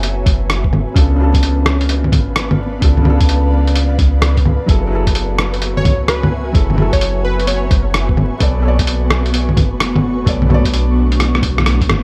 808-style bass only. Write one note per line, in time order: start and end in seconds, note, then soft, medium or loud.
0.00 0.25 F#1 medium
0.26 0.86 F#1 medium
0.96 2.14 C#2 medium
2.12 2.81 G#1 medium
2.82 3.19 C#2 loud
3.20 3.97 C#2 medium
3.99 4.58 C#2 medium
4.68 5.86 F#1 medium
5.85 6.53 C#2 medium
6.55 6.91 F#1 loud
6.93 7.70 F#1 medium
7.71 8.30 F#1 medium
8.41 9.58 B1 loud
9.57 10.25 F#1 medium
10.26 10.63 B1 loud
10.65 11.42 B1 medium
11.43 11.91 B1 loud
11.89 12.03 F#1 medium